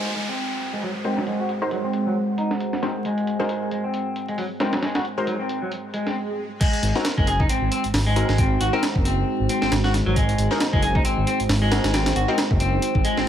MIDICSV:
0, 0, Header, 1, 8, 480
1, 0, Start_track
1, 0, Tempo, 444444
1, 1373, Time_signature, 4, 2, 24, 8
1, 14346, End_track
2, 0, Start_track
2, 0, Title_t, "Ambient pad"
2, 0, Program_c, 0, 92
2, 0, Note_on_c, 0, 56, 77
2, 0, Note_on_c, 0, 68, 70
2, 0, Note_on_c, 0, 72, 72
2, 0, Note_on_c, 0, 78, 85
2, 6610, Note_off_c, 0, 56, 0
2, 6610, Note_off_c, 0, 72, 0
2, 6611, Note_off_c, 0, 68, 0
2, 6611, Note_off_c, 0, 78, 0
2, 7135, Note_on_c, 0, 66, 76
2, 7137, Note_on_c, 0, 63, 75
2, 7138, Note_on_c, 0, 56, 81
2, 7138, Note_on_c, 0, 72, 86
2, 14346, Note_off_c, 0, 56, 0
2, 14346, Note_off_c, 0, 63, 0
2, 14346, Note_off_c, 0, 66, 0
2, 14346, Note_off_c, 0, 72, 0
2, 14346, End_track
3, 0, Start_track
3, 0, Title_t, "Synth stab"
3, 0, Program_c, 1, 62
3, 1128, Note_on_c, 1, 63, 67
3, 1128, Note_on_c, 1, 72, 83
3, 1129, Note_on_c, 1, 56, 75
3, 1129, Note_on_c, 1, 66, 67
3, 1129, Note_on_c, 1, 70, 66
3, 1279, Note_off_c, 1, 63, 0
3, 1279, Note_off_c, 1, 70, 0
3, 1279, Note_off_c, 1, 72, 0
3, 1280, Note_off_c, 1, 56, 0
3, 1280, Note_off_c, 1, 66, 0
3, 1745, Note_on_c, 1, 63, 83
3, 1746, Note_on_c, 1, 56, 88
3, 1746, Note_on_c, 1, 70, 81
3, 1746, Note_on_c, 1, 72, 99
3, 1747, Note_on_c, 1, 66, 81
3, 1868, Note_off_c, 1, 56, 0
3, 1868, Note_off_c, 1, 63, 0
3, 1868, Note_off_c, 1, 70, 0
3, 1868, Note_off_c, 1, 72, 0
3, 1869, Note_off_c, 1, 66, 0
3, 3048, Note_on_c, 1, 56, 72
3, 3049, Note_on_c, 1, 66, 68
3, 3050, Note_on_c, 1, 63, 68
3, 3050, Note_on_c, 1, 70, 69
3, 3050, Note_on_c, 1, 72, 83
3, 3199, Note_off_c, 1, 56, 0
3, 3200, Note_off_c, 1, 63, 0
3, 3200, Note_off_c, 1, 66, 0
3, 3200, Note_off_c, 1, 70, 0
3, 3200, Note_off_c, 1, 72, 0
3, 3665, Note_on_c, 1, 70, 81
3, 3666, Note_on_c, 1, 56, 88
3, 3666, Note_on_c, 1, 63, 79
3, 3666, Note_on_c, 1, 66, 83
3, 3666, Note_on_c, 1, 72, 102
3, 3788, Note_off_c, 1, 56, 0
3, 3788, Note_off_c, 1, 63, 0
3, 3788, Note_off_c, 1, 66, 0
3, 3788, Note_off_c, 1, 70, 0
3, 3789, Note_off_c, 1, 72, 0
3, 4971, Note_on_c, 1, 72, 81
3, 4972, Note_on_c, 1, 63, 67
3, 4973, Note_on_c, 1, 56, 73
3, 4973, Note_on_c, 1, 66, 69
3, 4973, Note_on_c, 1, 70, 67
3, 5121, Note_off_c, 1, 56, 0
3, 5121, Note_off_c, 1, 63, 0
3, 5121, Note_off_c, 1, 66, 0
3, 5121, Note_off_c, 1, 72, 0
3, 5122, Note_off_c, 1, 70, 0
3, 5588, Note_on_c, 1, 70, 83
3, 5589, Note_on_c, 1, 56, 92
3, 5589, Note_on_c, 1, 63, 81
3, 5589, Note_on_c, 1, 66, 80
3, 5589, Note_on_c, 1, 72, 97
3, 5710, Note_off_c, 1, 56, 0
3, 5710, Note_off_c, 1, 63, 0
3, 5710, Note_off_c, 1, 66, 0
3, 5710, Note_off_c, 1, 70, 0
3, 5710, Note_off_c, 1, 72, 0
3, 7510, Note_on_c, 1, 60, 92
3, 7510, Note_on_c, 1, 63, 87
3, 7510, Note_on_c, 1, 66, 85
3, 7510, Note_on_c, 1, 70, 101
3, 7630, Note_off_c, 1, 60, 0
3, 7630, Note_off_c, 1, 63, 0
3, 7630, Note_off_c, 1, 66, 0
3, 7630, Note_off_c, 1, 70, 0
3, 8811, Note_on_c, 1, 63, 70
3, 8812, Note_on_c, 1, 60, 76
3, 8812, Note_on_c, 1, 66, 72
3, 8812, Note_on_c, 1, 70, 86
3, 8961, Note_off_c, 1, 60, 0
3, 8961, Note_off_c, 1, 63, 0
3, 8961, Note_off_c, 1, 66, 0
3, 8961, Note_off_c, 1, 70, 0
3, 9428, Note_on_c, 1, 60, 96
3, 9428, Note_on_c, 1, 66, 87
3, 9428, Note_on_c, 1, 70, 108
3, 9429, Note_on_c, 1, 63, 86
3, 9549, Note_off_c, 1, 60, 0
3, 9549, Note_off_c, 1, 66, 0
3, 9549, Note_off_c, 1, 70, 0
3, 9550, Note_off_c, 1, 63, 0
3, 11345, Note_on_c, 1, 66, 89
3, 11346, Note_on_c, 1, 63, 88
3, 11346, Note_on_c, 1, 70, 104
3, 11347, Note_on_c, 1, 60, 96
3, 11468, Note_off_c, 1, 66, 0
3, 11469, Note_off_c, 1, 60, 0
3, 11469, Note_off_c, 1, 63, 0
3, 11469, Note_off_c, 1, 70, 0
3, 12650, Note_on_c, 1, 60, 77
3, 12650, Note_on_c, 1, 63, 76
3, 12650, Note_on_c, 1, 66, 74
3, 12651, Note_on_c, 1, 70, 87
3, 12800, Note_off_c, 1, 60, 0
3, 12800, Note_off_c, 1, 63, 0
3, 12800, Note_off_c, 1, 66, 0
3, 12800, Note_off_c, 1, 70, 0
3, 13263, Note_on_c, 1, 66, 90
3, 13264, Note_on_c, 1, 60, 94
3, 13264, Note_on_c, 1, 63, 87
3, 13264, Note_on_c, 1, 70, 101
3, 13387, Note_off_c, 1, 60, 0
3, 13387, Note_off_c, 1, 63, 0
3, 13387, Note_off_c, 1, 66, 0
3, 13388, Note_off_c, 1, 70, 0
3, 14346, End_track
4, 0, Start_track
4, 0, Title_t, "Clean electric guitar"
4, 0, Program_c, 2, 27
4, 0, Note_on_c, 2, 56, 72
4, 160, Note_off_c, 2, 56, 0
4, 173, Note_on_c, 2, 56, 70
4, 295, Note_off_c, 2, 56, 0
4, 309, Note_on_c, 2, 60, 71
4, 775, Note_off_c, 2, 60, 0
4, 791, Note_on_c, 2, 56, 70
4, 883, Note_off_c, 2, 56, 0
4, 897, Note_on_c, 2, 54, 79
4, 965, Note_off_c, 2, 54, 0
4, 1137, Note_on_c, 2, 60, 97
4, 1253, Note_off_c, 2, 60, 0
4, 1271, Note_on_c, 2, 54, 73
4, 1360, Note_off_c, 2, 54, 0
4, 1373, Note_on_c, 2, 56, 80
4, 1502, Note_off_c, 2, 56, 0
4, 1510, Note_on_c, 2, 66, 71
4, 1608, Note_off_c, 2, 66, 0
4, 1854, Note_on_c, 2, 54, 71
4, 1924, Note_off_c, 2, 54, 0
4, 1989, Note_on_c, 2, 60, 72
4, 2215, Note_off_c, 2, 60, 0
4, 2229, Note_on_c, 2, 54, 72
4, 2319, Note_off_c, 2, 54, 0
4, 2571, Note_on_c, 2, 63, 93
4, 2701, Note_off_c, 2, 63, 0
4, 3053, Note_on_c, 2, 60, 69
4, 3124, Note_off_c, 2, 60, 0
4, 3298, Note_on_c, 2, 56, 94
4, 3657, Note_off_c, 2, 56, 0
4, 3670, Note_on_c, 2, 56, 76
4, 4000, Note_off_c, 2, 56, 0
4, 4013, Note_on_c, 2, 56, 72
4, 4135, Note_off_c, 2, 56, 0
4, 4148, Note_on_c, 2, 60, 69
4, 4614, Note_off_c, 2, 60, 0
4, 4629, Note_on_c, 2, 56, 73
4, 4723, Note_off_c, 2, 56, 0
4, 4730, Note_on_c, 2, 54, 82
4, 4802, Note_off_c, 2, 54, 0
4, 4973, Note_on_c, 2, 60, 98
4, 5091, Note_off_c, 2, 60, 0
4, 5106, Note_on_c, 2, 54, 71
4, 5198, Note_off_c, 2, 54, 0
4, 5211, Note_on_c, 2, 56, 81
4, 5341, Note_off_c, 2, 56, 0
4, 5345, Note_on_c, 2, 66, 71
4, 5446, Note_off_c, 2, 66, 0
4, 5690, Note_on_c, 2, 54, 76
4, 5762, Note_off_c, 2, 54, 0
4, 5824, Note_on_c, 2, 60, 73
4, 6053, Note_off_c, 2, 60, 0
4, 6068, Note_on_c, 2, 54, 73
4, 6159, Note_off_c, 2, 54, 0
4, 6414, Note_on_c, 2, 56, 95
4, 6542, Note_off_c, 2, 56, 0
4, 6550, Note_on_c, 2, 60, 73
4, 6640, Note_off_c, 2, 60, 0
4, 7135, Note_on_c, 2, 56, 84
4, 7603, Note_off_c, 2, 56, 0
4, 7750, Note_on_c, 2, 56, 102
4, 7843, Note_off_c, 2, 56, 0
4, 7859, Note_on_c, 2, 68, 76
4, 7974, Note_off_c, 2, 68, 0
4, 7993, Note_on_c, 2, 63, 76
4, 8085, Note_off_c, 2, 63, 0
4, 8097, Note_on_c, 2, 60, 84
4, 8324, Note_off_c, 2, 60, 0
4, 8336, Note_on_c, 2, 60, 81
4, 8452, Note_off_c, 2, 60, 0
4, 8710, Note_on_c, 2, 56, 95
4, 9043, Note_off_c, 2, 56, 0
4, 9054, Note_on_c, 2, 60, 86
4, 9283, Note_off_c, 2, 60, 0
4, 9294, Note_on_c, 2, 66, 77
4, 9411, Note_off_c, 2, 66, 0
4, 9429, Note_on_c, 2, 60, 107
4, 9519, Note_off_c, 2, 60, 0
4, 9775, Note_on_c, 2, 60, 77
4, 10243, Note_off_c, 2, 60, 0
4, 10257, Note_on_c, 2, 60, 84
4, 10373, Note_off_c, 2, 60, 0
4, 10386, Note_on_c, 2, 60, 107
4, 10478, Note_off_c, 2, 60, 0
4, 10627, Note_on_c, 2, 66, 78
4, 10718, Note_off_c, 2, 66, 0
4, 10868, Note_on_c, 2, 54, 105
4, 10959, Note_off_c, 2, 54, 0
4, 10971, Note_on_c, 2, 56, 82
4, 11441, Note_off_c, 2, 56, 0
4, 11589, Note_on_c, 2, 56, 106
4, 11682, Note_off_c, 2, 56, 0
4, 11692, Note_on_c, 2, 68, 80
4, 11810, Note_off_c, 2, 68, 0
4, 11827, Note_on_c, 2, 63, 81
4, 11921, Note_off_c, 2, 63, 0
4, 11932, Note_on_c, 2, 60, 85
4, 12158, Note_off_c, 2, 60, 0
4, 12171, Note_on_c, 2, 60, 80
4, 12290, Note_off_c, 2, 60, 0
4, 12547, Note_on_c, 2, 56, 100
4, 12882, Note_off_c, 2, 56, 0
4, 12889, Note_on_c, 2, 60, 83
4, 13121, Note_off_c, 2, 60, 0
4, 13132, Note_on_c, 2, 66, 79
4, 13250, Note_off_c, 2, 66, 0
4, 13268, Note_on_c, 2, 60, 108
4, 13359, Note_off_c, 2, 60, 0
4, 13612, Note_on_c, 2, 60, 75
4, 14082, Note_off_c, 2, 60, 0
4, 14092, Note_on_c, 2, 56, 110
4, 14221, Note_off_c, 2, 56, 0
4, 14232, Note_on_c, 2, 60, 77
4, 14321, Note_off_c, 2, 60, 0
4, 14346, End_track
5, 0, Start_track
5, 0, Title_t, "Detuned saw bass"
5, 0, Program_c, 3, 39
5, 7371, Note_on_c, 3, 32, 98
5, 7473, Note_off_c, 3, 32, 0
5, 7749, Note_on_c, 3, 30, 96
5, 8051, Note_off_c, 3, 30, 0
5, 8095, Note_on_c, 3, 32, 45
5, 8202, Note_off_c, 3, 32, 0
5, 8225, Note_on_c, 3, 32, 81
5, 8304, Note_off_c, 3, 32, 0
5, 8468, Note_on_c, 3, 32, 45
5, 8551, Note_off_c, 3, 32, 0
5, 8568, Note_on_c, 3, 32, 90
5, 8891, Note_off_c, 3, 32, 0
5, 8946, Note_on_c, 3, 32, 104
5, 9249, Note_off_c, 3, 32, 0
5, 9291, Note_on_c, 3, 32, 97
5, 9393, Note_off_c, 3, 32, 0
5, 9669, Note_on_c, 3, 30, 97
5, 9971, Note_off_c, 3, 30, 0
5, 10147, Note_on_c, 3, 32, 82
5, 10225, Note_off_c, 3, 32, 0
5, 10388, Note_on_c, 3, 32, 44
5, 10471, Note_off_c, 3, 32, 0
5, 10491, Note_on_c, 3, 32, 88
5, 10813, Note_off_c, 3, 32, 0
5, 10864, Note_on_c, 3, 32, 103
5, 11168, Note_off_c, 3, 32, 0
5, 11211, Note_on_c, 3, 32, 103
5, 11313, Note_off_c, 3, 32, 0
5, 11587, Note_on_c, 3, 30, 97
5, 11890, Note_off_c, 3, 30, 0
5, 11932, Note_on_c, 3, 32, 45
5, 12041, Note_off_c, 3, 32, 0
5, 12069, Note_on_c, 3, 32, 83
5, 12146, Note_off_c, 3, 32, 0
5, 12308, Note_on_c, 3, 32, 45
5, 12391, Note_off_c, 3, 32, 0
5, 12407, Note_on_c, 3, 32, 92
5, 12731, Note_off_c, 3, 32, 0
5, 12784, Note_on_c, 3, 32, 102
5, 13088, Note_off_c, 3, 32, 0
5, 13127, Note_on_c, 3, 32, 97
5, 13231, Note_off_c, 3, 32, 0
5, 13506, Note_on_c, 3, 30, 95
5, 13809, Note_off_c, 3, 30, 0
5, 13985, Note_on_c, 3, 32, 83
5, 14065, Note_off_c, 3, 32, 0
5, 14224, Note_on_c, 3, 32, 44
5, 14310, Note_off_c, 3, 32, 0
5, 14346, End_track
6, 0, Start_track
6, 0, Title_t, "Downlifter"
6, 0, Program_c, 4, 103
6, 0, Note_on_c, 4, 60, 67
6, 3291, Note_off_c, 4, 60, 0
6, 14346, End_track
7, 0, Start_track
7, 0, Title_t, "Swell"
7, 0, Program_c, 5, 103
7, 6171, Note_on_c, 5, 60, 71
7, 7132, Note_off_c, 5, 60, 0
7, 14346, End_track
8, 0, Start_track
8, 0, Title_t, "Drums"
8, 170, Note_on_c, 9, 42, 63
8, 278, Note_off_c, 9, 42, 0
8, 407, Note_on_c, 9, 42, 83
8, 515, Note_off_c, 9, 42, 0
8, 650, Note_on_c, 9, 42, 61
8, 758, Note_off_c, 9, 42, 0
8, 785, Note_on_c, 9, 42, 39
8, 885, Note_on_c, 9, 46, 74
8, 893, Note_off_c, 9, 42, 0
8, 993, Note_off_c, 9, 46, 0
8, 1127, Note_on_c, 9, 42, 66
8, 1235, Note_off_c, 9, 42, 0
8, 1262, Note_on_c, 9, 38, 53
8, 1368, Note_on_c, 9, 42, 84
8, 1370, Note_off_c, 9, 38, 0
8, 1476, Note_off_c, 9, 42, 0
8, 1609, Note_on_c, 9, 42, 63
8, 1717, Note_off_c, 9, 42, 0
8, 1849, Note_on_c, 9, 42, 82
8, 1957, Note_off_c, 9, 42, 0
8, 2089, Note_on_c, 9, 42, 66
8, 2197, Note_off_c, 9, 42, 0
8, 2570, Note_on_c, 9, 42, 62
8, 2678, Note_off_c, 9, 42, 0
8, 2710, Note_on_c, 9, 38, 45
8, 2813, Note_on_c, 9, 42, 78
8, 2818, Note_off_c, 9, 38, 0
8, 2921, Note_off_c, 9, 42, 0
8, 2950, Note_on_c, 9, 38, 51
8, 3053, Note_off_c, 9, 38, 0
8, 3053, Note_on_c, 9, 38, 54
8, 3053, Note_on_c, 9, 42, 64
8, 3161, Note_off_c, 9, 38, 0
8, 3161, Note_off_c, 9, 42, 0
8, 3293, Note_on_c, 9, 42, 78
8, 3401, Note_off_c, 9, 42, 0
8, 3431, Note_on_c, 9, 42, 41
8, 3535, Note_off_c, 9, 42, 0
8, 3535, Note_on_c, 9, 42, 65
8, 3643, Note_off_c, 9, 42, 0
8, 3670, Note_on_c, 9, 38, 33
8, 3770, Note_on_c, 9, 42, 81
8, 3778, Note_off_c, 9, 38, 0
8, 3878, Note_off_c, 9, 42, 0
8, 4011, Note_on_c, 9, 42, 63
8, 4119, Note_off_c, 9, 42, 0
8, 4252, Note_on_c, 9, 42, 88
8, 4360, Note_off_c, 9, 42, 0
8, 4492, Note_on_c, 9, 42, 61
8, 4600, Note_off_c, 9, 42, 0
8, 4628, Note_on_c, 9, 42, 41
8, 4730, Note_on_c, 9, 46, 74
8, 4736, Note_off_c, 9, 42, 0
8, 4838, Note_off_c, 9, 46, 0
8, 4969, Note_on_c, 9, 38, 97
8, 4969, Note_on_c, 9, 42, 77
8, 5077, Note_off_c, 9, 38, 0
8, 5077, Note_off_c, 9, 42, 0
8, 5105, Note_on_c, 9, 38, 98
8, 5105, Note_on_c, 9, 42, 74
8, 5211, Note_off_c, 9, 38, 0
8, 5211, Note_off_c, 9, 42, 0
8, 5211, Note_on_c, 9, 38, 95
8, 5211, Note_on_c, 9, 42, 75
8, 5319, Note_off_c, 9, 38, 0
8, 5319, Note_off_c, 9, 42, 0
8, 5346, Note_on_c, 9, 38, 97
8, 5346, Note_on_c, 9, 42, 73
8, 5453, Note_off_c, 9, 42, 0
8, 5453, Note_on_c, 9, 42, 61
8, 5454, Note_off_c, 9, 38, 0
8, 5561, Note_off_c, 9, 42, 0
8, 5692, Note_on_c, 9, 42, 81
8, 5800, Note_off_c, 9, 42, 0
8, 5933, Note_on_c, 9, 42, 64
8, 6041, Note_off_c, 9, 42, 0
8, 6174, Note_on_c, 9, 42, 85
8, 6282, Note_off_c, 9, 42, 0
8, 6412, Note_on_c, 9, 42, 64
8, 6520, Note_off_c, 9, 42, 0
8, 6551, Note_on_c, 9, 38, 47
8, 6659, Note_off_c, 9, 38, 0
8, 7135, Note_on_c, 9, 36, 108
8, 7136, Note_on_c, 9, 42, 89
8, 7136, Note_on_c, 9, 49, 88
8, 7243, Note_off_c, 9, 36, 0
8, 7244, Note_off_c, 9, 42, 0
8, 7244, Note_off_c, 9, 49, 0
8, 7272, Note_on_c, 9, 42, 43
8, 7375, Note_off_c, 9, 42, 0
8, 7375, Note_on_c, 9, 42, 68
8, 7483, Note_off_c, 9, 42, 0
8, 7510, Note_on_c, 9, 38, 38
8, 7611, Note_off_c, 9, 38, 0
8, 7611, Note_on_c, 9, 38, 118
8, 7611, Note_on_c, 9, 42, 88
8, 7719, Note_off_c, 9, 38, 0
8, 7719, Note_off_c, 9, 42, 0
8, 7749, Note_on_c, 9, 36, 103
8, 7854, Note_on_c, 9, 42, 69
8, 7857, Note_off_c, 9, 36, 0
8, 7962, Note_off_c, 9, 42, 0
8, 7990, Note_on_c, 9, 36, 100
8, 8094, Note_on_c, 9, 42, 95
8, 8098, Note_off_c, 9, 36, 0
8, 8202, Note_off_c, 9, 42, 0
8, 8334, Note_on_c, 9, 42, 67
8, 8442, Note_off_c, 9, 42, 0
8, 8468, Note_on_c, 9, 42, 45
8, 8575, Note_on_c, 9, 38, 115
8, 8575, Note_on_c, 9, 46, 83
8, 8576, Note_off_c, 9, 42, 0
8, 8683, Note_off_c, 9, 38, 0
8, 8683, Note_off_c, 9, 46, 0
8, 8816, Note_on_c, 9, 42, 70
8, 8924, Note_off_c, 9, 42, 0
8, 8951, Note_on_c, 9, 38, 57
8, 9054, Note_on_c, 9, 36, 108
8, 9054, Note_on_c, 9, 42, 90
8, 9059, Note_off_c, 9, 38, 0
8, 9162, Note_off_c, 9, 36, 0
8, 9162, Note_off_c, 9, 42, 0
8, 9294, Note_on_c, 9, 42, 69
8, 9402, Note_off_c, 9, 42, 0
8, 9534, Note_on_c, 9, 38, 119
8, 9534, Note_on_c, 9, 42, 89
8, 9642, Note_off_c, 9, 38, 0
8, 9642, Note_off_c, 9, 42, 0
8, 9670, Note_on_c, 9, 36, 98
8, 9778, Note_off_c, 9, 36, 0
8, 9778, Note_on_c, 9, 42, 72
8, 9886, Note_off_c, 9, 42, 0
8, 10254, Note_on_c, 9, 42, 71
8, 10362, Note_off_c, 9, 42, 0
8, 10390, Note_on_c, 9, 38, 53
8, 10496, Note_off_c, 9, 38, 0
8, 10496, Note_on_c, 9, 38, 120
8, 10496, Note_on_c, 9, 42, 89
8, 10604, Note_off_c, 9, 38, 0
8, 10604, Note_off_c, 9, 42, 0
8, 10630, Note_on_c, 9, 38, 56
8, 10737, Note_off_c, 9, 38, 0
8, 10737, Note_on_c, 9, 38, 56
8, 10737, Note_on_c, 9, 42, 69
8, 10845, Note_off_c, 9, 38, 0
8, 10845, Note_off_c, 9, 42, 0
8, 10974, Note_on_c, 9, 36, 114
8, 10976, Note_on_c, 9, 42, 90
8, 11082, Note_off_c, 9, 36, 0
8, 11084, Note_off_c, 9, 42, 0
8, 11112, Note_on_c, 9, 42, 45
8, 11215, Note_off_c, 9, 42, 0
8, 11215, Note_on_c, 9, 42, 67
8, 11323, Note_off_c, 9, 42, 0
8, 11351, Note_on_c, 9, 38, 36
8, 11452, Note_off_c, 9, 38, 0
8, 11452, Note_on_c, 9, 38, 117
8, 11452, Note_on_c, 9, 42, 89
8, 11560, Note_off_c, 9, 38, 0
8, 11560, Note_off_c, 9, 42, 0
8, 11588, Note_on_c, 9, 36, 98
8, 11691, Note_on_c, 9, 42, 70
8, 11696, Note_off_c, 9, 36, 0
8, 11799, Note_off_c, 9, 42, 0
8, 11828, Note_on_c, 9, 36, 102
8, 11931, Note_on_c, 9, 42, 97
8, 11936, Note_off_c, 9, 36, 0
8, 12039, Note_off_c, 9, 42, 0
8, 12174, Note_on_c, 9, 42, 69
8, 12282, Note_off_c, 9, 42, 0
8, 12311, Note_on_c, 9, 42, 43
8, 12414, Note_on_c, 9, 38, 121
8, 12414, Note_on_c, 9, 46, 83
8, 12419, Note_off_c, 9, 42, 0
8, 12522, Note_off_c, 9, 38, 0
8, 12522, Note_off_c, 9, 46, 0
8, 12653, Note_on_c, 9, 38, 103
8, 12653, Note_on_c, 9, 42, 81
8, 12761, Note_off_c, 9, 38, 0
8, 12761, Note_off_c, 9, 42, 0
8, 12789, Note_on_c, 9, 38, 105
8, 12789, Note_on_c, 9, 42, 83
8, 12893, Note_off_c, 9, 38, 0
8, 12893, Note_off_c, 9, 42, 0
8, 12893, Note_on_c, 9, 38, 106
8, 12893, Note_on_c, 9, 42, 81
8, 13001, Note_off_c, 9, 38, 0
8, 13001, Note_off_c, 9, 42, 0
8, 13027, Note_on_c, 9, 38, 104
8, 13027, Note_on_c, 9, 42, 81
8, 13132, Note_off_c, 9, 42, 0
8, 13132, Note_on_c, 9, 42, 69
8, 13135, Note_off_c, 9, 38, 0
8, 13240, Note_off_c, 9, 42, 0
8, 13369, Note_on_c, 9, 38, 116
8, 13369, Note_on_c, 9, 42, 89
8, 13477, Note_off_c, 9, 38, 0
8, 13477, Note_off_c, 9, 42, 0
8, 13506, Note_on_c, 9, 36, 96
8, 13609, Note_on_c, 9, 42, 67
8, 13614, Note_off_c, 9, 36, 0
8, 13717, Note_off_c, 9, 42, 0
8, 13850, Note_on_c, 9, 42, 95
8, 13958, Note_off_c, 9, 42, 0
8, 13986, Note_on_c, 9, 36, 96
8, 14090, Note_on_c, 9, 42, 71
8, 14094, Note_off_c, 9, 36, 0
8, 14198, Note_off_c, 9, 42, 0
8, 14228, Note_on_c, 9, 38, 51
8, 14336, Note_off_c, 9, 38, 0
8, 14346, End_track
0, 0, End_of_file